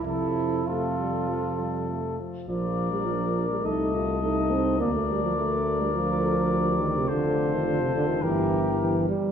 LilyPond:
<<
  \new Staff \with { instrumentName = "Trumpet" } { \time 4/4 \key f \major \tempo 4 = 104 a'4 a'2~ a'8 r8 | \key bes \major d''2 ees''2 | d''1 | c''2 bes'4. r8 | }
  \new Staff \with { instrumentName = "Flugelhorn" } { \time 4/4 \key f \major e'4 f'2 r4 | \key bes \major bes'2 a'2 | bes'1 | a'2 g'4. r8 | }
  \new Staff \with { instrumentName = "French horn" } { \time 4/4 \key f \major f4 a8 g8 f8 g8 a8 f8 | \key bes \major f'4 d'4 ees'8 f'8 ees'4 | d'2 f'8 a'8 g'4 | f'2 e'4. r8 | }
  \new Staff \with { instrumentName = "Trombone" } { \clef bass \time 4/4 \key f \major c4 c2~ c8 r8 | \key bes \major f8. g16 f8. g16 a4 a8 c'8 | bes16 a16 g16 f16 a8. g16 f4. ees16 c16 | d8. ees16 d16 c16 d16 ees16 e4 e8 g8 | }
  \new Staff \with { instrumentName = "Bass trombone" } { \clef bass \time 4/4 \key f \major f,2.~ f,8 r8 | \key bes \major bes,,2 c,2 | d,1 | f,,2 g,,4. r8 | }
>>